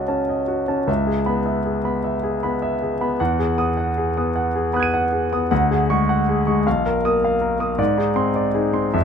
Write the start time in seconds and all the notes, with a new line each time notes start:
Already playing: C#2 C#4 F#4 D#5 A5
0.08 C#4 A5
0.29 D#5
0.48 F#4
0.68 C#4 A5
0.87 C#2 E5
1.07 G#4
1.26 B3 B5
1.46 E5
1.65 G#4
1.84 B3 B5
2.04 E5
2.23 G#4
2.43 B3 B5
2.62 E5
2.82 G#4
3.01 B3 B5
3.20 E2 F#5
3.39 G#4
3.58 B3 D#6
3.77 F#5
3.97 G#4
4.17 B3 D#6
4.36 F#5
4.55 G#4
4.73 B3 B5 D#6 F#6
4.80 G#6 D#7
4.94 F#5
5.13 G#4
5.33 B3 D#6
5.51 D2 F#5
5.71 G#4
5.90 G#3 C#6
6.09 F#5
6.29 G#4
6.47 G#3 C#6
6.67 B1 F5
6.86 A#4
7.05 A#3 D#6
7.25 F5
7.41 A#4
7.60 A#3 D#6
7.78 G#2 D5
7.97 D#4 G#4
8.16 C4 C6
8.36 D5
8.54 D#4 G#4
8.73 C4 C6
8.94 F2 E5